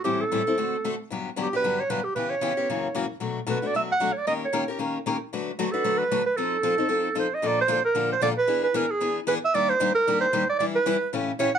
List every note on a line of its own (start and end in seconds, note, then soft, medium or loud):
0.04 0.22 A2 soft
0.04 0.23 E3 soft
0.04 0.23 G3 medium
0.04 0.23 C4 medium
0.04 0.23 E4 medium
0.04 0.22 G4 medium
0.04 0.23 A4 medium
0.21 0.99 A4 medium
0.32 0.41 A2 medium
0.32 0.41 E3 medium
0.32 0.42 G3 medium
0.32 0.41 C4 medium
0.32 0.42 E4 medium
0.32 0.42 A4 medium
0.47 0.57 G3 soft
0.47 0.57 C4 soft
0.47 0.57 E4 soft
0.47 0.57 A4 soft
0.58 0.75 D3 medium
0.58 0.76 A3 medium
0.58 0.76 C4 medium
0.58 0.76 F#4 medium
0.58 0.76 A4 medium
0.84 0.94 D3 medium
0.84 0.94 A3 medium
0.84 0.94 C4 medium
0.84 0.94 F#4 medium
0.84 0.94 A4 medium
1.10 1.28 G2 medium
1.10 1.29 D3 medium
1.10 1.29 F#3 soft
1.10 1.29 B3 medium
1.10 1.29 D4 medium
1.10 1.29 G4 medium
1.36 1.46 G2 medium
1.36 1.47 D3 medium
1.36 1.47 F#3 medium
1.36 1.47 B3 medium
1.36 1.47 D4 medium
1.36 1.47 G4 medium
1.42 1.53 G4 medium
1.53 1.63 F#3 soft
1.53 1.63 B3 soft
1.53 1.63 D4 soft
1.53 1.63 G4 medium
1.53 1.81 B4 medium
1.64 1.81 G2 medium
1.64 1.81 D3 medium
1.64 1.82 F#3 medium
1.64 1.82 B3 medium
1.64 1.82 D4 medium
1.64 1.82 G4 medium
1.80 1.92 C#5 medium
1.90 2.00 G2 medium
1.90 1.99 D3 medium
1.90 2.00 F#3 medium
1.90 2.00 B3 medium
1.90 2.00 D4 medium
1.90 2.00 G4 medium
1.90 2.05 B4 medium
2.04 2.14 G4 medium
2.15 2.34 C#3 soft
2.15 2.34 E3 medium
2.15 2.34 B3 medium
2.15 2.34 C#4 soft
2.15 2.34 G4 medium
2.15 2.32 B4 medium
2.30 3.09 C#5 medium
2.41 2.52 C#3 medium
2.41 2.52 E3 medium
2.41 2.52 B3 medium
2.41 2.52 C#4 medium
2.41 2.52 G4 medium
2.57 2.68 B3 soft
2.57 2.68 C#4 soft
2.57 2.67 G4 soft
2.69 2.87 F#2 medium
2.69 2.87 C#3 medium
2.69 2.87 E3 medium
2.69 2.87 A#3 medium
2.69 2.87 C#4 medium
2.69 2.87 F#4 medium
2.95 3.05 F#2 medium
2.95 3.05 C#3 medium
2.95 3.05 E3 medium
2.95 3.05 A#3 medium
2.95 3.05 C#4 medium
2.95 3.05 F#4 medium
3.20 3.39 B2 soft
3.20 3.39 F#3 soft
3.20 3.39 A3 soft
3.20 3.39 D4 medium
3.20 3.39 F#4 soft
3.47 3.57 B2 medium
3.47 3.57 F#3 medium
3.47 3.57 A3 medium
3.47 3.57 D4 medium
3.47 3.57 F#4 medium
3.47 3.68 B4 medium
3.62 3.73 A3 soft
3.62 3.73 D4 soft
3.62 3.73 F#4 soft
3.67 3.75 D5 medium
3.74 3.92 B2 soft
3.74 3.92 F#3 medium
3.74 3.92 A3 medium
3.74 3.92 D4 medium
3.74 3.93 F#4 medium
3.74 3.82 E5 medium
3.92 4.14 F#5 medium
4.00 4.10 B2 medium
4.00 4.10 F#3 medium
4.00 4.10 A3 medium
4.00 4.10 D4 medium
4.00 4.10 F#4 medium
4.13 4.19 C#5 soft
4.17 4.27 D5 medium
4.27 4.45 D#3 soft
4.27 4.45 A#3 medium
4.27 4.45 C#4 medium
4.27 4.45 G4 medium
4.27 4.45 A#4 medium
4.27 4.34 D#5 medium
4.45 4.67 C#5 medium
4.53 4.63 D#3 medium
4.53 4.63 A#3 medium
4.53 4.63 C#4 medium
4.53 4.63 G4 medium
4.53 4.63 A#4 medium
4.68 4.78 C#4 soft
4.68 4.79 G4 soft
4.68 4.78 A#4 soft
4.79 4.97 D#3 medium
4.79 4.97 A#3 medium
4.79 4.97 C#4 medium
4.79 4.98 G4 medium
4.79 4.98 A#4 medium
5.06 5.16 D#3 medium
5.06 5.16 A#3 medium
5.06 5.16 C#4 medium
5.06 5.16 G4 medium
5.06 5.16 A#4 medium
5.33 5.50 D3 medium
5.33 5.51 F#3 medium
5.33 5.51 A3 soft
5.33 5.51 D4 medium
5.33 5.51 F#4 medium
5.33 5.51 B4 medium
5.59 5.69 D3 medium
5.59 5.69 F#3 medium
5.59 5.69 A3 medium
5.59 5.69 D4 medium
5.59 5.73 F#4 medium
5.59 5.69 F#4 medium
5.59 5.69 B4 medium
5.71 5.83 A3 soft
5.71 5.83 D4 soft
5.71 5.84 F#4 soft
5.71 5.99 A4 medium
5.71 5.84 B4 medium
5.84 6.03 D3 medium
5.84 6.03 F#3 medium
5.84 6.03 A3 medium
5.84 6.03 D4 medium
5.84 6.03 F#4 medium
5.84 6.03 B4 medium
5.98 6.25 B4 medium
6.11 6.21 D3 medium
6.11 6.21 F#3 medium
6.11 6.21 A3 medium
6.11 6.21 D4 medium
6.11 6.21 F#4 medium
6.11 6.22 B4 medium
6.26 6.38 B4 medium
6.36 6.55 F3 medium
6.36 6.56 C4 medium
6.36 6.56 D#4 medium
6.36 7.16 A4 medium
6.36 6.56 A4 medium
6.63 6.74 F3 medium
6.63 6.74 C4 medium
6.63 6.74 D#4 medium
6.63 6.74 A4 medium
6.78 6.88 C4 soft
6.78 6.88 D#4 soft
6.78 6.88 A4 soft
6.89 7.07 F3 medium
6.89 7.08 C4 medium
6.89 7.08 D#4 medium
6.89 7.08 A4 medium
7.15 7.26 F3 medium
7.15 7.26 C4 medium
7.15 7.26 D#4 medium
7.15 7.26 A4 medium
7.15 7.36 C5 medium
7.34 7.48 D#5 medium
7.42 7.61 A#2 medium
7.42 7.61 D3 medium
7.42 7.61 F3 medium
7.42 7.61 A#3 medium
7.42 7.61 D4 medium
7.42 7.61 A4 medium
7.47 7.60 D5 medium
7.61 7.84 C5 medium
7.68 7.79 A#2 medium
7.68 7.79 D3 medium
7.68 7.79 F3 medium
7.68 7.79 A#3 medium
7.68 7.79 D4 medium
7.68 7.79 A4 medium
7.84 8.09 A#4 medium
7.95 8.13 A#2 medium
7.95 8.13 D3 medium
7.95 8.13 F3 medium
7.95 8.14 A#3 medium
7.95 8.14 D4 medium
7.95 8.14 A4 medium
8.12 8.22 C5 medium
8.21 8.32 A#2 medium
8.21 8.32 D3 medium
8.21 8.32 F3 medium
8.21 8.32 A#3 medium
8.21 8.32 D4 medium
8.21 8.32 A4 medium
8.21 8.29 D5 medium
8.38 8.62 B4 medium
8.47 8.66 E3 medium
8.47 8.66 B3 medium
8.47 8.66 D4 medium
8.47 8.66 G#4 medium
8.63 8.77 B4 medium
8.74 8.84 E3 medium
8.74 8.85 B3 medium
8.74 8.85 D4 medium
8.74 8.85 G#4 medium
8.74 8.92 A#4 medium
8.91 9.16 G#4 medium
9.01 9.19 E3 medium
9.01 9.19 B3 medium
9.01 9.19 D4 medium
9.01 9.19 G#4 medium
9.27 9.37 E3 medium
9.27 9.37 B3 medium
9.27 9.37 D4 medium
9.27 9.38 G#4 medium
9.27 9.34 B4 medium
9.45 9.56 E5 loud
9.54 9.72 D#3 medium
9.54 9.72 G3 medium
9.54 9.72 A#3 medium
9.54 9.72 D4 medium
9.54 9.72 G4 medium
9.54 9.71 D5 loud
9.69 9.94 C5 medium
9.80 9.90 D#3 medium
9.80 9.90 G3 medium
9.80 9.90 A#3 medium
9.80 9.90 D4 medium
9.80 9.90 G4 medium
9.95 10.19 A#4 medium
10.07 10.25 D#3 medium
10.07 10.25 G3 medium
10.07 10.25 A#3 medium
10.07 10.25 D4 medium
10.07 10.25 G4 medium
10.21 10.45 C5 medium
10.33 10.43 D#3 medium
10.33 10.43 G3 medium
10.33 10.43 A#3 medium
10.33 10.43 D4 medium
10.33 10.43 G4 medium
10.50 10.58 D5 medium
10.59 10.78 E3 medium
10.59 10.78 G3 medium
10.59 10.78 D4 medium
10.59 10.78 E4 medium
10.59 10.78 B4 medium
10.59 10.65 D5 medium
10.75 11.09 B4 medium
10.86 10.96 E3 medium
10.86 10.96 G3 medium
10.86 10.96 D4 medium
10.86 10.96 E4 medium
10.86 10.96 B4 medium
11.13 11.30 A2 medium
11.13 11.30 C#3 medium
11.13 11.30 E3 medium
11.13 11.31 A3 medium
11.13 11.31 C#4 medium
11.13 11.31 G4 medium
11.39 11.49 A2 medium
11.39 11.49 C#3 medium
11.39 11.49 E3 medium
11.39 11.49 A3 medium
11.39 11.49 C#4 medium
11.39 11.49 G4 medium
11.39 11.53 C#5 medium
11.54 11.59 F#5 medium